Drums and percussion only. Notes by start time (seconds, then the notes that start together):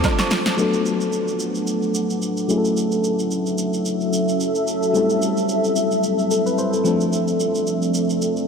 0.04 kick, snare, low woodblock, shaker
0.19 snare, high agogo, shaker
0.31 snare, open hi-hat, shaker
0.46 snare, shaker
0.58 shaker
0.73 shaker
0.86 shaker
1.01 shaker
1.12 shaker
1.28 shaker
1.40 shaker
1.55 shaker
1.67 shaker
1.82 shaker
1.95 shaker
2.10 shaker
2.22 shaker
2.37 shaker
2.49 shaker
2.65 shaker
2.77 shaker
2.92 shaker
3.04 shaker
3.19 shaker
3.31 shaker
3.46 shaker
3.58 shaker
3.73 shaker
3.85 shaker
4.01 shaker
4.13 shaker
4.28 shaker
4.40 shaker
4.55 shaker
4.67 shaker
4.83 shaker
4.95 shaker
5.10 shaker
5.22 shaker
5.37 shaker
5.49 shaker
5.64 shaker
5.76 shaker
5.91 shaker
6.03 shaker
6.19 shaker
6.31 shaker
6.46 shaker
6.58 shaker
6.73 shaker
6.85 shaker
7.01 shaker
7.13 shaker
7.28 shaker
7.40 shaker
7.55 shaker
7.67 shaker
7.82 shaker
7.94 shaker
8.10 shaker
8.22 shaker
8.37 shaker